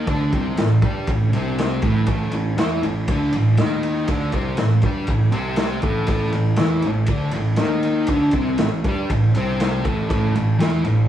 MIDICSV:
0, 0, Header, 1, 4, 480
1, 0, Start_track
1, 0, Tempo, 500417
1, 81, Time_signature, 4, 2, 24, 8
1, 10632, End_track
2, 0, Start_track
2, 0, Title_t, "Distorted electric guitar"
2, 0, Program_c, 0, 30
2, 79, Note_on_c, 0, 50, 88
2, 93, Note_on_c, 0, 62, 87
2, 313, Note_off_c, 0, 50, 0
2, 320, Note_off_c, 0, 62, 0
2, 328, Note_on_c, 0, 48, 91
2, 339, Note_on_c, 0, 60, 98
2, 558, Note_off_c, 0, 48, 0
2, 563, Note_off_c, 0, 60, 0
2, 569, Note_on_c, 0, 45, 73
2, 758, Note_off_c, 0, 45, 0
2, 805, Note_on_c, 0, 55, 88
2, 815, Note_on_c, 0, 67, 99
2, 1037, Note_off_c, 0, 55, 0
2, 1042, Note_off_c, 0, 67, 0
2, 1063, Note_on_c, 0, 45, 73
2, 1245, Note_off_c, 0, 45, 0
2, 1290, Note_on_c, 0, 48, 87
2, 1305, Note_on_c, 0, 60, 89
2, 1755, Note_off_c, 0, 48, 0
2, 1759, Note_on_c, 0, 45, 88
2, 1761, Note_off_c, 0, 60, 0
2, 1765, Note_on_c, 0, 57, 107
2, 1994, Note_off_c, 0, 45, 0
2, 1997, Note_off_c, 0, 57, 0
2, 2009, Note_on_c, 0, 45, 78
2, 2022, Note_on_c, 0, 57, 94
2, 2235, Note_off_c, 0, 45, 0
2, 2246, Note_off_c, 0, 57, 0
2, 2246, Note_on_c, 0, 45, 66
2, 2437, Note_off_c, 0, 45, 0
2, 2477, Note_on_c, 0, 52, 84
2, 2487, Note_on_c, 0, 64, 106
2, 2714, Note_off_c, 0, 52, 0
2, 2719, Note_off_c, 0, 64, 0
2, 2728, Note_on_c, 0, 45, 72
2, 2918, Note_off_c, 0, 45, 0
2, 2976, Note_on_c, 0, 50, 86
2, 2982, Note_on_c, 0, 62, 108
2, 3203, Note_off_c, 0, 50, 0
2, 3206, Note_off_c, 0, 62, 0
2, 3222, Note_on_c, 0, 45, 65
2, 3406, Note_off_c, 0, 45, 0
2, 3457, Note_on_c, 0, 51, 80
2, 3464, Note_on_c, 0, 63, 90
2, 3924, Note_off_c, 0, 51, 0
2, 3928, Note_off_c, 0, 63, 0
2, 3931, Note_on_c, 0, 50, 80
2, 3943, Note_on_c, 0, 62, 90
2, 4161, Note_off_c, 0, 50, 0
2, 4167, Note_off_c, 0, 62, 0
2, 4171, Note_on_c, 0, 48, 84
2, 4180, Note_on_c, 0, 60, 105
2, 4398, Note_off_c, 0, 48, 0
2, 4402, Note_on_c, 0, 45, 77
2, 4406, Note_off_c, 0, 60, 0
2, 4596, Note_off_c, 0, 45, 0
2, 4650, Note_on_c, 0, 55, 82
2, 4663, Note_on_c, 0, 67, 108
2, 4881, Note_off_c, 0, 55, 0
2, 4887, Note_off_c, 0, 67, 0
2, 4889, Note_on_c, 0, 45, 68
2, 5080, Note_off_c, 0, 45, 0
2, 5102, Note_on_c, 0, 48, 84
2, 5115, Note_on_c, 0, 60, 92
2, 5581, Note_off_c, 0, 48, 0
2, 5585, Note_on_c, 0, 45, 96
2, 5588, Note_off_c, 0, 60, 0
2, 5591, Note_on_c, 0, 57, 96
2, 5826, Note_off_c, 0, 45, 0
2, 5832, Note_off_c, 0, 57, 0
2, 5838, Note_on_c, 0, 45, 82
2, 5849, Note_on_c, 0, 57, 87
2, 6075, Note_off_c, 0, 45, 0
2, 6081, Note_off_c, 0, 57, 0
2, 6084, Note_on_c, 0, 45, 66
2, 6277, Note_off_c, 0, 45, 0
2, 6328, Note_on_c, 0, 52, 96
2, 6343, Note_on_c, 0, 64, 94
2, 6560, Note_off_c, 0, 52, 0
2, 6567, Note_off_c, 0, 64, 0
2, 6590, Note_on_c, 0, 45, 69
2, 6770, Note_off_c, 0, 45, 0
2, 6815, Note_on_c, 0, 50, 94
2, 6821, Note_on_c, 0, 62, 99
2, 7043, Note_off_c, 0, 50, 0
2, 7046, Note_off_c, 0, 62, 0
2, 7067, Note_on_c, 0, 45, 70
2, 7248, Note_off_c, 0, 45, 0
2, 7286, Note_on_c, 0, 51, 87
2, 7300, Note_on_c, 0, 63, 99
2, 7758, Note_off_c, 0, 51, 0
2, 7763, Note_on_c, 0, 50, 79
2, 7765, Note_off_c, 0, 63, 0
2, 7773, Note_on_c, 0, 62, 96
2, 7997, Note_off_c, 0, 50, 0
2, 8002, Note_off_c, 0, 62, 0
2, 8002, Note_on_c, 0, 48, 81
2, 8006, Note_on_c, 0, 60, 99
2, 8236, Note_off_c, 0, 48, 0
2, 8238, Note_off_c, 0, 60, 0
2, 8257, Note_on_c, 0, 45, 75
2, 8443, Note_off_c, 0, 45, 0
2, 8506, Note_on_c, 0, 55, 84
2, 8524, Note_on_c, 0, 67, 106
2, 8727, Note_off_c, 0, 55, 0
2, 8737, Note_off_c, 0, 67, 0
2, 8753, Note_on_c, 0, 45, 71
2, 8930, Note_off_c, 0, 45, 0
2, 8975, Note_on_c, 0, 48, 85
2, 8992, Note_on_c, 0, 60, 96
2, 9441, Note_off_c, 0, 48, 0
2, 9449, Note_off_c, 0, 60, 0
2, 9452, Note_on_c, 0, 45, 84
2, 9460, Note_on_c, 0, 57, 96
2, 9670, Note_off_c, 0, 45, 0
2, 9680, Note_off_c, 0, 57, 0
2, 9682, Note_on_c, 0, 45, 82
2, 9692, Note_on_c, 0, 57, 84
2, 9914, Note_off_c, 0, 45, 0
2, 9919, Note_off_c, 0, 57, 0
2, 9935, Note_on_c, 0, 45, 72
2, 10119, Note_off_c, 0, 45, 0
2, 10159, Note_on_c, 0, 52, 94
2, 10168, Note_on_c, 0, 64, 104
2, 10392, Note_off_c, 0, 52, 0
2, 10396, Note_off_c, 0, 64, 0
2, 10400, Note_on_c, 0, 45, 76
2, 10591, Note_off_c, 0, 45, 0
2, 10632, End_track
3, 0, Start_track
3, 0, Title_t, "Picked electric bass"
3, 0, Program_c, 1, 34
3, 64, Note_on_c, 1, 38, 99
3, 295, Note_off_c, 1, 38, 0
3, 308, Note_on_c, 1, 36, 90
3, 519, Note_off_c, 1, 36, 0
3, 524, Note_on_c, 1, 33, 69
3, 765, Note_off_c, 1, 33, 0
3, 789, Note_on_c, 1, 43, 97
3, 1018, Note_off_c, 1, 43, 0
3, 1031, Note_on_c, 1, 33, 86
3, 1255, Note_off_c, 1, 33, 0
3, 1260, Note_on_c, 1, 36, 94
3, 1718, Note_off_c, 1, 36, 0
3, 1752, Note_on_c, 1, 33, 92
3, 1981, Note_off_c, 1, 33, 0
3, 1988, Note_on_c, 1, 33, 100
3, 2201, Note_off_c, 1, 33, 0
3, 2207, Note_on_c, 1, 33, 79
3, 2444, Note_off_c, 1, 33, 0
3, 2449, Note_on_c, 1, 40, 87
3, 2689, Note_off_c, 1, 40, 0
3, 2709, Note_on_c, 1, 33, 83
3, 2940, Note_off_c, 1, 33, 0
3, 2952, Note_on_c, 1, 38, 95
3, 3181, Note_off_c, 1, 38, 0
3, 3186, Note_on_c, 1, 33, 83
3, 3418, Note_off_c, 1, 33, 0
3, 3426, Note_on_c, 1, 39, 96
3, 3882, Note_off_c, 1, 39, 0
3, 3912, Note_on_c, 1, 38, 99
3, 4141, Note_off_c, 1, 38, 0
3, 4149, Note_on_c, 1, 36, 96
3, 4372, Note_off_c, 1, 36, 0
3, 4377, Note_on_c, 1, 33, 72
3, 4614, Note_off_c, 1, 33, 0
3, 4634, Note_on_c, 1, 43, 99
3, 4863, Note_off_c, 1, 43, 0
3, 4879, Note_on_c, 1, 33, 84
3, 5089, Note_off_c, 1, 33, 0
3, 5095, Note_on_c, 1, 36, 86
3, 5556, Note_off_c, 1, 36, 0
3, 5594, Note_on_c, 1, 33, 86
3, 5823, Note_off_c, 1, 33, 0
3, 5831, Note_on_c, 1, 33, 90
3, 6048, Note_off_c, 1, 33, 0
3, 6054, Note_on_c, 1, 33, 78
3, 6292, Note_off_c, 1, 33, 0
3, 6313, Note_on_c, 1, 40, 85
3, 6540, Note_off_c, 1, 40, 0
3, 6546, Note_on_c, 1, 33, 77
3, 6778, Note_off_c, 1, 33, 0
3, 6792, Note_on_c, 1, 38, 99
3, 7015, Note_off_c, 1, 38, 0
3, 7020, Note_on_c, 1, 33, 80
3, 7255, Note_off_c, 1, 33, 0
3, 7267, Note_on_c, 1, 39, 93
3, 7722, Note_off_c, 1, 39, 0
3, 7754, Note_on_c, 1, 38, 97
3, 7982, Note_off_c, 1, 38, 0
3, 7990, Note_on_c, 1, 36, 93
3, 8220, Note_off_c, 1, 36, 0
3, 8237, Note_on_c, 1, 33, 74
3, 8464, Note_off_c, 1, 33, 0
3, 8482, Note_on_c, 1, 43, 89
3, 8706, Note_off_c, 1, 43, 0
3, 8727, Note_on_c, 1, 33, 83
3, 8948, Note_off_c, 1, 33, 0
3, 8954, Note_on_c, 1, 36, 86
3, 9404, Note_off_c, 1, 36, 0
3, 9444, Note_on_c, 1, 33, 97
3, 9666, Note_off_c, 1, 33, 0
3, 9684, Note_on_c, 1, 33, 103
3, 9906, Note_off_c, 1, 33, 0
3, 9915, Note_on_c, 1, 33, 80
3, 10140, Note_off_c, 1, 33, 0
3, 10156, Note_on_c, 1, 40, 87
3, 10381, Note_off_c, 1, 40, 0
3, 10395, Note_on_c, 1, 33, 84
3, 10619, Note_off_c, 1, 33, 0
3, 10632, End_track
4, 0, Start_track
4, 0, Title_t, "Drums"
4, 68, Note_on_c, 9, 51, 92
4, 71, Note_on_c, 9, 36, 108
4, 164, Note_off_c, 9, 51, 0
4, 167, Note_off_c, 9, 36, 0
4, 313, Note_on_c, 9, 36, 101
4, 313, Note_on_c, 9, 51, 62
4, 409, Note_off_c, 9, 36, 0
4, 409, Note_off_c, 9, 51, 0
4, 549, Note_on_c, 9, 51, 87
4, 560, Note_on_c, 9, 38, 111
4, 645, Note_off_c, 9, 51, 0
4, 656, Note_off_c, 9, 38, 0
4, 788, Note_on_c, 9, 51, 69
4, 789, Note_on_c, 9, 36, 109
4, 884, Note_off_c, 9, 51, 0
4, 885, Note_off_c, 9, 36, 0
4, 1029, Note_on_c, 9, 51, 90
4, 1032, Note_on_c, 9, 36, 98
4, 1125, Note_off_c, 9, 51, 0
4, 1128, Note_off_c, 9, 36, 0
4, 1276, Note_on_c, 9, 51, 75
4, 1372, Note_off_c, 9, 51, 0
4, 1519, Note_on_c, 9, 51, 83
4, 1530, Note_on_c, 9, 38, 95
4, 1615, Note_off_c, 9, 51, 0
4, 1625, Note_off_c, 9, 38, 0
4, 1744, Note_on_c, 9, 51, 65
4, 1751, Note_on_c, 9, 36, 100
4, 1840, Note_off_c, 9, 51, 0
4, 1847, Note_off_c, 9, 36, 0
4, 1980, Note_on_c, 9, 51, 97
4, 1991, Note_on_c, 9, 36, 109
4, 2076, Note_off_c, 9, 51, 0
4, 2087, Note_off_c, 9, 36, 0
4, 2221, Note_on_c, 9, 51, 71
4, 2316, Note_off_c, 9, 51, 0
4, 2472, Note_on_c, 9, 51, 93
4, 2483, Note_on_c, 9, 38, 107
4, 2568, Note_off_c, 9, 51, 0
4, 2579, Note_off_c, 9, 38, 0
4, 2716, Note_on_c, 9, 51, 71
4, 2812, Note_off_c, 9, 51, 0
4, 2951, Note_on_c, 9, 51, 102
4, 2956, Note_on_c, 9, 36, 115
4, 3047, Note_off_c, 9, 51, 0
4, 3052, Note_off_c, 9, 36, 0
4, 3189, Note_on_c, 9, 51, 76
4, 3285, Note_off_c, 9, 51, 0
4, 3427, Note_on_c, 9, 51, 86
4, 3437, Note_on_c, 9, 38, 96
4, 3523, Note_off_c, 9, 51, 0
4, 3533, Note_off_c, 9, 38, 0
4, 3673, Note_on_c, 9, 51, 70
4, 3769, Note_off_c, 9, 51, 0
4, 3909, Note_on_c, 9, 51, 101
4, 3917, Note_on_c, 9, 36, 113
4, 4005, Note_off_c, 9, 51, 0
4, 4013, Note_off_c, 9, 36, 0
4, 4145, Note_on_c, 9, 51, 70
4, 4157, Note_on_c, 9, 36, 98
4, 4241, Note_off_c, 9, 51, 0
4, 4253, Note_off_c, 9, 36, 0
4, 4383, Note_on_c, 9, 51, 91
4, 4394, Note_on_c, 9, 38, 109
4, 4479, Note_off_c, 9, 51, 0
4, 4489, Note_off_c, 9, 38, 0
4, 4620, Note_on_c, 9, 51, 64
4, 4635, Note_on_c, 9, 36, 99
4, 4716, Note_off_c, 9, 51, 0
4, 4731, Note_off_c, 9, 36, 0
4, 4862, Note_on_c, 9, 51, 87
4, 4872, Note_on_c, 9, 36, 94
4, 4957, Note_off_c, 9, 51, 0
4, 4968, Note_off_c, 9, 36, 0
4, 5103, Note_on_c, 9, 51, 75
4, 5199, Note_off_c, 9, 51, 0
4, 5334, Note_on_c, 9, 51, 80
4, 5344, Note_on_c, 9, 38, 106
4, 5430, Note_off_c, 9, 51, 0
4, 5440, Note_off_c, 9, 38, 0
4, 5580, Note_on_c, 9, 51, 63
4, 5593, Note_on_c, 9, 36, 101
4, 5676, Note_off_c, 9, 51, 0
4, 5689, Note_off_c, 9, 36, 0
4, 5818, Note_on_c, 9, 51, 92
4, 5834, Note_on_c, 9, 36, 105
4, 5914, Note_off_c, 9, 51, 0
4, 5929, Note_off_c, 9, 36, 0
4, 6066, Note_on_c, 9, 51, 59
4, 6162, Note_off_c, 9, 51, 0
4, 6295, Note_on_c, 9, 51, 89
4, 6306, Note_on_c, 9, 38, 116
4, 6391, Note_off_c, 9, 51, 0
4, 6402, Note_off_c, 9, 38, 0
4, 6545, Note_on_c, 9, 51, 67
4, 6641, Note_off_c, 9, 51, 0
4, 6775, Note_on_c, 9, 51, 96
4, 6793, Note_on_c, 9, 36, 110
4, 6871, Note_off_c, 9, 51, 0
4, 6889, Note_off_c, 9, 36, 0
4, 7014, Note_on_c, 9, 51, 75
4, 7110, Note_off_c, 9, 51, 0
4, 7253, Note_on_c, 9, 51, 84
4, 7264, Note_on_c, 9, 38, 98
4, 7349, Note_off_c, 9, 51, 0
4, 7360, Note_off_c, 9, 38, 0
4, 7508, Note_on_c, 9, 51, 74
4, 7604, Note_off_c, 9, 51, 0
4, 7737, Note_on_c, 9, 51, 99
4, 7754, Note_on_c, 9, 36, 110
4, 7833, Note_off_c, 9, 51, 0
4, 7850, Note_off_c, 9, 36, 0
4, 7973, Note_on_c, 9, 51, 70
4, 7993, Note_on_c, 9, 36, 94
4, 8069, Note_off_c, 9, 51, 0
4, 8089, Note_off_c, 9, 36, 0
4, 8227, Note_on_c, 9, 51, 99
4, 8238, Note_on_c, 9, 38, 112
4, 8323, Note_off_c, 9, 51, 0
4, 8334, Note_off_c, 9, 38, 0
4, 8483, Note_on_c, 9, 36, 112
4, 8485, Note_on_c, 9, 51, 69
4, 8579, Note_off_c, 9, 36, 0
4, 8581, Note_off_c, 9, 51, 0
4, 8726, Note_on_c, 9, 36, 99
4, 8727, Note_on_c, 9, 51, 99
4, 8822, Note_off_c, 9, 36, 0
4, 8823, Note_off_c, 9, 51, 0
4, 8963, Note_on_c, 9, 51, 74
4, 9059, Note_off_c, 9, 51, 0
4, 9207, Note_on_c, 9, 51, 85
4, 9218, Note_on_c, 9, 38, 99
4, 9303, Note_off_c, 9, 51, 0
4, 9314, Note_off_c, 9, 38, 0
4, 9448, Note_on_c, 9, 36, 96
4, 9449, Note_on_c, 9, 51, 62
4, 9544, Note_off_c, 9, 36, 0
4, 9545, Note_off_c, 9, 51, 0
4, 9690, Note_on_c, 9, 36, 116
4, 9697, Note_on_c, 9, 51, 88
4, 9786, Note_off_c, 9, 36, 0
4, 9793, Note_off_c, 9, 51, 0
4, 9932, Note_on_c, 9, 51, 69
4, 10028, Note_off_c, 9, 51, 0
4, 10169, Note_on_c, 9, 51, 89
4, 10180, Note_on_c, 9, 38, 113
4, 10265, Note_off_c, 9, 51, 0
4, 10276, Note_off_c, 9, 38, 0
4, 10403, Note_on_c, 9, 51, 66
4, 10499, Note_off_c, 9, 51, 0
4, 10632, End_track
0, 0, End_of_file